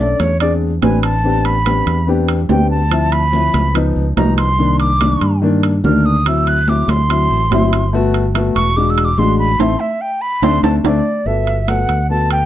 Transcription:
Already playing: fingered electric bass B1
0.00 grand piano C#4 D4 A4, flute D5
0.20 fingered electric bass E2, flute C#5, high conga, high timbale
0.40 grand piano C4 D4 G#4, flute D5, high conga, high timbale
0.62 high conga
0.82 fingered electric bass A1, grand piano C4 D4 B4, flute G#5, high conga, high timbale, low timbale
1.03 flute A5, high conga, high timbale
1.24 grand piano B3 C4 D4 G4, high conga
1.45 flute B5, high conga, high timbale
1.65 grand piano B3 C4 D4 G4, high conga, high timbale
1.87 fingered electric bass E2, high conga, high timbale
2.07 grand piano B3 C4 D4 G4, high conga
2.28 high conga, high timbale
2.49 fingered electric bass D2, grand piano B3 C4 D4 G4, flute G5, high conga, low timbale
2.71 flute A5
2.91 grand piano F3 C4 E4, high conga, high timbale
3.12 flute B5, high conga, high timbale
3.32 grand piano F3 C4 E4, high conga
3.54 fingered electric bass C#2, high conga, high timbale
3.75 grand piano F3 B3 D#4, high conga, high timbale
3.96 fingered electric bass C#2, high conga
4.17 fingered electric bass C2, grand piano F3 B3 D#4, flute A#5, high conga, high timbale, low timbale
4.38 flute C6, high conga, high timbale
4.58 grand piano D#3 A#3 D4, high conga
4.80 flute D6, high conga, high timbale
5.00 grand piano D#3 A#3 D4, high conga, high timbale
5.21 fingered electric bass G2, high conga, high timbale
5.42 grand piano D#3 A#3 D4, high conga
5.63 high conga, high timbale
5.84 fingered electric bass D2, grand piano D#3 A#3 D4, flute F6, high conga, low timbale
6.06 flute D#6
6.25 grand piano F#3 C4 E4, flute E6, high conga, high timbale
6.47 flute F#6, high conga, high timbale
6.67 grand piano F#3 C4 E4, flute D6, high conga
6.88 fingered electric bass D2, flute C6, high conga, high timbale
7.09 grand piano F#3 C4 E4, high timbale
7.30 fingered electric bass A1, high conga
7.51 fingered electric bass G1, grand piano F#3 C4 E4, high conga, high timbale, low timbale
7.72 high conga, high timbale
7.93 grand piano A3 B3 F#4, high conga
8.14 high conga, high timbale
8.34 grand piano A3 B3 F#4, high conga, high timbale
8.55 fingered electric bass E1, flute C#6, high conga, high timbale
8.77 grand piano G#3 D4 F#4, flute D6, high conga
8.90 flute E6
8.97 high conga, high timbale
9.05 flute D6
9.17 fingered electric bass A1, grand piano G#3 D4 F#4, flute C6, high conga
9.39 flute B5
9.59 fingered electric bass A1, grand piano A3 C4 E4, flute C6, high conga, high timbale
9.80 flute E5
10.01 flute G5
10.21 flute B5
10.42 fingered electric bass D2, grand piano A3 C4 D4, flute C6, high conga, high timbale
10.63 fingered electric bass D2, grand piano A3 C4 D4, flute A5, high conga, high timbale
10.84 fingered electric bass D2, grand piano A3 C4 D4, flute D5, high conga, high timbale
11.26 fingered electric bass G1, grand piano B3 F#4 A4, flute E5, high conga
11.47 high conga, high timbale
11.67 grand piano B3 F#4 A4, flute F#5, high conga, high timbale
11.88 fingered electric bass D2, high conga, high timbale
12.09 grand piano B3 F#4 A4, flute A5, high conga
12.30 flute G5, high conga, high timbale

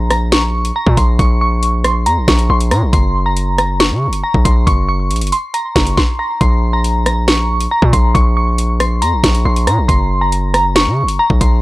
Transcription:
Already playing: 808-style bass A#1
0.10 synth bell A#5, cross-stick, closed hi-hat
0.32 synth bell C#6, snare, closed hi-hat
0.65 closed hi-hat
0.76 synth bell A#5
0.87 808-style bass A#2, kick
0.97 808-style bass A#1, synth bell C6, kick, closed hi-hat
1.19 808-style bass A#1, synth bell C#6, kick, closed hi-hat
1.41 synth bell C#6
1.63 closed hi-hat
1.84 synth bell C6, cross-stick, closed hi-hat
2.06 808-style bass F2, synth bell A#5, closed hi-hat
2.17 808-style bass A#1
2.28 808-style bass A#1, synth bell C#6, kick, snare, closed hi-hat
2.39 closed hi-hat
2.50 808-style bass A#1, synth bell C6
2.60 closed hi-hat
2.71 808-style bass A#2, synth bell A#5, cross-stick, closed hi-hat
2.82 808-style bass A#1
2.93 808-style bass F#1, synth bell C6, kick, closed hi-hat
3.26 synth bell A#5
3.37 closed hi-hat
3.58 synth bell A#5, cross-stick, closed hi-hat
3.80 synth bell C#6, snare, closed hi-hat
3.91 808-style bass C#3
4.07 808-style bass F#1
4.13 closed hi-hat
4.24 synth bell A#5
4.34 808-style bass A#1, kick
4.45 808-style bass A#1, synth bell C6, kick, closed hi-hat
4.67 808-style bass F#1, synth bell C#6, kick, closed hi-hat
4.89 synth bell C#6
5.10 808-style bass A#1, closed hi-hat
5.16 closed hi-hat
5.21 808-style bass F#1, closed hi-hat
5.27 closed hi-hat
5.32 synth bell C6, closed hi-hat
5.54 synth bell A#5, closed hi-hat
5.75 808-style bass F#1, synth bell C#6, kick, snare, closed hi-hat
5.87 closed hi-hat
5.97 synth bell C6, kick, snare
6.19 synth bell A#5
6.41 808-style bass A#1, synth bell C6, kick, closed hi-hat
6.73 synth bell A#5
6.84 closed hi-hat
7.06 synth bell A#5, cross-stick, closed hi-hat
7.28 synth bell C#6, snare, closed hi-hat
7.61 closed hi-hat
7.71 synth bell A#5
7.82 808-style bass A#2, kick
7.93 808-style bass A#1, synth bell C6, kick, closed hi-hat
8.15 808-style bass A#1, synth bell C#6, kick, closed hi-hat
8.37 synth bell C#6
8.58 closed hi-hat
8.80 synth bell C6, cross-stick, closed hi-hat
9.02 808-style bass F2, synth bell A#5, closed hi-hat
9.13 808-style bass A#1
9.24 808-style bass A#1, synth bell C#6, kick, snare, closed hi-hat
9.35 closed hi-hat
9.45 808-style bass A#1, synth bell C6
9.56 closed hi-hat
9.67 808-style bass A#2, synth bell A#5, cross-stick, closed hi-hat
9.78 808-style bass A#1
9.88 808-style bass F#1, synth bell C6, kick, closed hi-hat
10.21 synth bell A#5
10.32 closed hi-hat
10.54 synth bell A#5, cross-stick, closed hi-hat
10.76 synth bell C#6, snare, closed hi-hat
10.87 808-style bass C#3
11.03 808-style bass F#1
11.08 closed hi-hat
11.19 synth bell A#5
11.30 808-style bass A#1, kick
11.41 808-style bass A#1, synth bell C6, kick, closed hi-hat

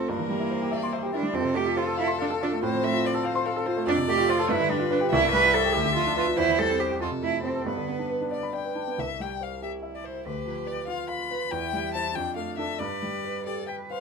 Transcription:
Already playing: grand piano F2 C3 A3 F4 A4 C5 F5 C6
0.08 grand piano G2, cello A#3, violin A#4
0.19 grand piano E3
0.29 grand piano G3
0.40 grand piano E4
0.51 grand piano C5
0.62 grand piano G4
0.71 violin D5, grand piano E5
0.83 grand piano C6
0.93 violin C5, grand piano E5
1.02 grand piano G4
1.13 cello D4, grand piano E4, violin A#4
1.23 grand piano G3
1.33 grand piano F2, cello C4, violin A4
1.45 grand piano C3
1.55 grand piano A3, cello G4
1.65 grand piano F4
1.77 cello F4, grand piano C5
1.87 grand piano A4
1.97 cello E4, grand piano F5
2.07 grand piano C6
2.19 cello D4, grand piano F5
2.30 grand piano A4
2.41 cello D4, grand piano F4
2.52 grand piano A3
2.63 grand piano A2, cello C4, violin C5
2.74 grand piano F3
2.83 grand piano A3, violin E5
2.94 grand piano F4
3.04 grand piano C5, violin D5
3.14 grand piano A4
3.25 violin C5, grand piano F5
3.35 grand piano C6
3.46 violin A4, grand piano F5
3.56 grand piano A4
3.66 grand piano F4, violin C5
3.77 grand piano A3
3.87 grand piano F2, cello D4, violin D5
3.98 grand piano C3
4.08 grand piano A3, cello G4
4.18 grand piano F4
4.29 cello F4, grand piano C5
4.39 grand piano A4
4.49 grand piano G2, cello E4, violin B4
4.60 grand piano D3
4.69 grand piano G3, cello D4
4.79 grand piano F4
4.91 cello D4, grand piano B4
5.01 grand piano G4
5.10 grand piano C2, cello E4, violin E5
5.23 grand piano G2
5.33 grand piano G3, cello B4
5.44 grand piano E4
5.53 cello A4, grand piano C5
5.65 grand piano G4
5.74 grand piano D2, cello G4
5.85 grand piano D3
5.96 grand piano F3, cello F4
6.06 grand piano D4
6.16 cello F4, grand piano B4
6.27 grand piano F4
6.37 grand piano E2, cello E4, violin C5
6.48 grand piano E3
6.59 grand piano G3, cello A4
6.70 grand piano C4
6.79 cello G4, grand piano C5
6.90 grand piano G4
7.00 grand piano F2, cello F4, violin A4
7.12 grand piano C3
7.22 grand piano A3, cello E4
7.32 grand piano E4
7.44 cello C4, grand piano C5
7.55 grand piano A4
7.66 grand piano G2, cello B3, violin B4
7.77 grand piano D3
7.88 grand piano B3
7.99 grand piano D4
8.10 grand piano B4
8.21 grand piano D4
8.31 grand piano D5, violin D5
8.43 grand piano B5
8.53 grand piano D5, violin G5
8.65 grand piano B4
8.75 grand piano D4
8.88 grand piano B3
8.98 grand piano C2, violin E5
9.20 grand piano G3, violin G5
9.41 grand piano C5, violin F5
9.62 cello E4, grand piano G4, violin E5
9.83 grand piano E5
9.95 violin D5
10.04 grand piano C5, violin C5
10.25 grand piano D2, cello G4, violin B4
10.46 grand piano F3
10.67 grand piano B4, violin D5
10.87 grand piano F4, cello F4, violin F5
11.09 grand piano F5, violin B5
11.31 grand piano B4
11.52 grand piano E2, cello E4, violin G5
11.73 grand piano G3
11.94 grand piano E4 C5, violin A5
12.15 grand piano F2, cello D4, violin G5
12.36 grand piano A3, violin F5
12.58 grand piano D4 A4, violin E5
12.79 grand piano G2, cello B4, violin D5
13.02 grand piano G3
13.24 grand piano B4
13.46 grand piano G4, cello A4, violin D5
13.68 cello B4, violin G5, grand piano G5
13.90 grand piano B4, cello C5, violin F5

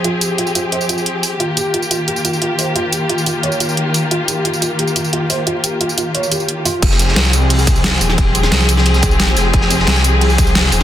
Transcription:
Already playing: string section F3 C4 G4 G#4
0.04 felt piano F4, closed hi-hat
0.21 felt piano G4, closed hi-hat, tambourine
0.38 felt piano F4, closed hi-hat
0.47 tambourine
0.55 felt piano F4, closed hi-hat, tambourine
0.72 felt piano C5, closed hi-hat
0.81 tambourine
0.89 felt piano F4, closed hi-hat, tambourine
0.98 tambourine
1.06 closed hi-hat
1.23 open hi-hat, tambourine
1.40 string section D#3 A#3 F4, felt piano F4, closed hi-hat
1.57 felt piano G4, closed hi-hat, tambourine
1.74 felt piano F4, closed hi-hat
1.82 tambourine
1.91 felt piano F4, closed hi-hat, tambourine
2.08 felt piano G4, closed hi-hat
2.16 tambourine
2.25 felt piano F4, closed hi-hat, tambourine
2.33 tambourine
2.42 felt piano F4, closed hi-hat
2.59 felt piano C5, open hi-hat, tambourine
2.76 felt piano F4, closed hi-hat
2.93 felt piano G4, closed hi-hat, tambourine
3.09 felt piano F4, closed hi-hat
3.18 tambourine
3.26 felt piano F4, closed hi-hat, tambourine
3.43 felt piano C#5, closed hi-hat
3.52 tambourine
3.60 felt piano F4, closed hi-hat, tambourine
3.69 tambourine
3.77 closed hi-hat
3.94 open hi-hat, tambourine
4.11 felt piano F4, closed hi-hat
4.28 felt piano G4, closed hi-hat, tambourine
4.45 felt piano F4, closed hi-hat
4.53 tambourine
4.62 felt piano F4, closed hi-hat, tambourine
4.79 felt piano G4, closed hi-hat
4.87 tambourine
4.96 felt piano F4, closed hi-hat, tambourine
5.04 tambourine
5.13 felt piano F4, closed hi-hat
5.30 felt piano C5, open hi-hat, tambourine
5.47 felt piano F4, closed hi-hat
5.64 felt piano G4, closed hi-hat, tambourine
5.81 felt piano F4, closed hi-hat
5.89 tambourine
5.98 felt piano F4, closed hi-hat, tambourine
6.15 felt piano C#5, closed hi-hat
6.23 tambourine
6.32 felt piano G4, closed hi-hat, tambourine
6.40 tambourine
6.49 closed hi-hat
6.65 felt piano F4, open hi-hat, tambourine
6.82 detuned saw bass F1, string section F3 C4 G4 G#4, kick, closed hi-hat, ride, crash
6.91 snare
6.99 snare, closed hi-hat, ride, tambourine
7.08 snare
7.16 detuned saw bass C2, snare, closed hi-hat, ride
7.25 snare, tambourine
7.33 closed hi-hat, ride, tambourine
7.50 closed hi-hat, open hi-hat
7.59 tambourine
7.67 kick, closed hi-hat, ride, tambourine
7.76 tambourine
7.84 snare, closed hi-hat, ride
7.92 snare
8.01 detuned saw bass D#1, open hi-hat, ride, tambourine
8.10 snare
8.18 kick, closed hi-hat, ride
8.35 closed hi-hat, ride, tambourine
8.43 snare
8.52 detuned saw bass C2, snare, closed hi-hat, ride
8.60 tambourine
8.69 closed hi-hat, ride, tambourine
8.77 snare
8.86 closed hi-hat, ride
8.94 snare, tambourine
9.03 kick, closed hi-hat, ride, tambourine
9.11 detuned saw bass B1, tambourine
9.20 snare, closed hi-hat, ride
9.28 snare
9.37 detuned saw bass F1, snare, open hi-hat, ride, tambourine
9.54 detuned saw bass F1, kick, closed hi-hat, ride
9.61 snare
9.70 snare, closed hi-hat, ride, tambourine
9.79 snare
9.87 detuned saw bass C2, snare, closed hi-hat, ride
9.96 snare, tambourine
10.04 closed hi-hat, tambourine
10.21 closed hi-hat, open hi-hat
10.30 tambourine
10.38 kick, closed hi-hat, ride, tambourine
10.47 tambourine
10.55 snare, closed hi-hat, ride
10.64 snare
10.72 detuned saw bass D#1, open hi-hat, ride, tambourine

